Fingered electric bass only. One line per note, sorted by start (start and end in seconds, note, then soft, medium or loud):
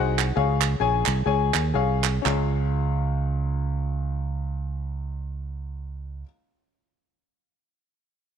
0.00 0.30 C2 medium
0.36 0.74 C#2 loud
0.80 1.03 A#1 medium
1.07 1.23 C2 loud
1.26 1.50 C#2 medium
1.54 1.71 D#2 medium
1.74 2.18 C2 medium
2.25 6.23 C#2 loud